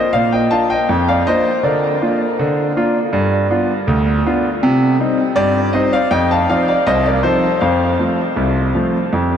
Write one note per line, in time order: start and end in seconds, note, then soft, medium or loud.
0.00 0.13 C5 medium
0.00 0.14 D#5 medium
0.13 0.46 A#2 medium
0.13 0.31 D5 medium
0.13 0.32 F5 medium
0.32 0.51 D#5 medium
0.32 0.51 G5 medium
0.51 0.72 A#3 soft
0.51 0.72 D4 soft
0.51 0.72 F4 medium
0.51 0.69 F5 medium
0.51 0.70 A5 medium
0.70 1.05 D#5 medium
0.70 1.06 G5 medium
0.89 1.21 F2 medium
1.08 1.26 D5 medium
1.08 1.27 F5 medium
1.27 1.48 A#3 medium
1.27 1.48 D4 medium
1.27 1.48 F4 medium
1.27 1.62 C5 medium
1.27 1.57 D#5 medium
1.63 1.95 D3 medium
1.63 4.59 A#4 medium
1.63 4.58 D5 medium
2.02 2.22 A#3 soft
2.02 2.22 D4 medium
2.02 2.23 F4 medium
2.39 2.71 D3 medium
2.76 2.97 A#3 medium
2.76 2.97 D4 medium
2.76 2.97 F4 medium
3.13 3.45 G2 medium
3.50 3.71 B3 medium
3.50 3.71 D4 medium
3.50 3.71 F4 medium
3.87 4.19 D2 medium
4.26 4.46 B3 medium
4.26 4.46 D4 medium
4.26 4.47 F4 medium
4.63 4.94 C3 loud
5.00 5.20 G3 medium
5.00 5.20 C4 medium
5.00 5.21 D#4 medium
5.36 5.68 G2 medium
5.36 5.71 G4 medium
5.36 5.72 D5 loud
5.73 5.94 G3 medium
5.73 5.95 C4 medium
5.73 5.95 D#4 medium
5.73 5.92 C5 medium
5.73 5.92 D#5 medium
5.93 6.11 D5 medium
5.93 6.12 F5 loud
6.11 6.43 F2 medium
6.11 6.29 D#5 medium
6.11 6.30 G5 loud
6.31 6.48 F5 medium
6.31 6.49 A5 medium
6.50 6.70 F3 medium
6.50 6.70 C4 medium
6.50 6.71 D#4 medium
6.50 6.67 D5 medium
6.50 6.67 F5 medium
6.68 6.86 D5 medium
6.68 6.87 F5 medium
6.87 7.19 C2 medium
6.87 7.05 C5 medium
6.87 7.05 D#5 loud
7.06 7.24 A#4 medium
7.06 7.24 D5 medium
7.23 7.45 F3 soft
7.23 7.45 C4 medium
7.23 7.45 D#4 medium
7.23 7.60 A4 medium
7.23 7.60 C5 medium
7.61 7.94 F2 medium
7.61 9.37 C5 medium
7.61 9.37 F5 medium
7.99 8.20 F3 soft
7.99 8.20 A3 soft
7.99 8.21 C4 soft
8.36 8.69 C2 medium
8.75 8.96 F3 medium
8.75 8.96 A3 medium
8.75 8.96 C4 medium
9.13 9.37 F2 medium